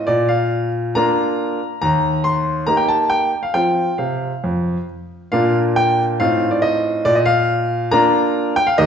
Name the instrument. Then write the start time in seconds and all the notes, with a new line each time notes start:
grand piano
0.07 A#2 D5
0.29 F5
0.95 A#3 D4 F4 A#5
1.82 D#2 A#5
2.24 C6
2.67 A#3 D#4 G4 A#5
2.77 G5
2.88 A5
3.10 G5
3.43 F5
3.54 F3 C4 F4 G5
3.98 C3 F5
4.44 F2
5.32 A#2 A#3 D4 F4 F5
5.76 G5
6.20 A2 C4 D#4 F4 F5
6.51 D5
6.62 D#5
7.05 A#2 D5
7.15 D#5
7.26 F5
7.91 A#3 D4 F4 A#5
8.56 G5
8.67 F5
8.78 D#2 A#3 D#4 G4 D#5